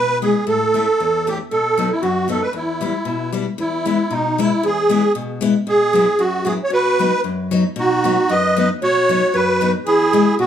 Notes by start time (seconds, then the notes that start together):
Already playing: B2 B4
0.22 G#3 B3 E4 G#4
0.47 A2 A4
0.74 A3 C#4 E4
1.00 E2
1.27 A3 C#4 E4 G4
1.51 B2 A4
1.77 F#3 B3 D#4
1.91 E4
2.02 F#2 F#4
2.28 F#3 B3 D#4 A4
2.42 B4
2.53 E2 E4
2.81 G3 B3 E4
3.05 B2
3.33 G3 B3 E4
3.58 E2 E4
3.86 G#3 B3 E4
4.11 B2 D#4
4.38 G#3 B3 E4
4.63 E2 G#4
4.89 G#3 B3 E4
5.15 B2
5.41 G#3 B3 E4
5.67 B2 G#4
5.93 F#3 B3 E4
6.19 F#2 F#4
6.45 F#3 B3 E4 G#4
6.64 C#5
6.70 B2 F#4 B4
6.99 F#3 B3 D#4
7.24 F#2
7.51 F#3 B3 D#4
7.76 B2 D#4 F#4
8.04 F#3 B3 D#4
8.29 F#2 B4 D#5
8.57 F#3 B3 D#4 B4 D#5
8.82 B2 F#4 C#5
9.09 F#3 B3 D#4
9.34 F#2 F#4 B4
9.61 F#3 B3 D#4
9.86 E2 E4 G#4
10.13 G#3 B3 E4
10.39 B2 B3 F#4